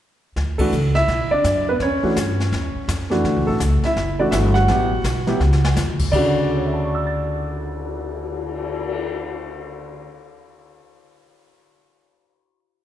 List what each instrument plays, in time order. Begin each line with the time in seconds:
0.36 upright bass D2, brush sweep, kick, snare
0.58 grand piano E3 A3 D4 F#4 A4, kick, ride
0.72 upright bass C#2, hi-hat pedal
0.95 grand piano E4 E5, snare
1.08 upright bass B1, brush sweep, kick, snare
1.30 grand piano D4 D5, muted upright bass stroke
1.44 upright bass F#2, kick, snare, hi-hat pedal
1.69 grand piano B3 B4
1.80 upright bass E2, grand piano C#5, brush sweep, kick, snare
1.84 grand piano C#4
2.03 grand piano E3 A3 D4 F#4, muted upright bass stroke
2.16 upright bass G2, kick, snare, hi-hat pedal
2.40 snare
2.52 upright bass D#2, brush sweep, kick, snare
2.76 muted upright bass stroke
2.88 upright bass F2, kick, snare, hi-hat pedal
3.10 grand piano E3 A3 D4 F#4, snare
3.24 upright bass D2, brush sweep, kick, snare
3.36 upright bass C#2
3.47 upright bass A1, grand piano A3 A4
3.60 upright bass C#2, kick, snare, hi-hat pedal
3.83 grand piano E4 E5, muted upright bass stroke, snare
3.96 upright bass F#1, brush sweep, kick, snare
4.19 grand piano E3 A3 D4 F#4 D5
4.31 upright bass G1, grand piano E4 E5, kick, snare, hi-hat pedal
4.54 grand piano F#4 F#5, snare
4.68 upright bass A1, grand piano F#3 B3 E4 G4, brush sweep, kick, snare
5.04 upright bass B1, kick, snare, hi-hat pedal
5.27 grand piano F#3 B3 E4 G4, snare
5.40 upright bass C#2, snare
5.53 snare
5.65 snare
5.75 upright bass E2, snare, hi-hat pedal
5.88 upright bass D2
5.99 upright bass C#2, kick, crash
6.12 grand piano D2 C#3 D3 F#4 D5, upright bass D2, kick, crash
6.36 cymbal swell
6.49 grand piano A4
6.57 grand piano C#5
6.65 grand piano E5
6.74 grand piano A5
6.84 grand piano C#6
6.95 grand piano E6
7.07 grand piano A6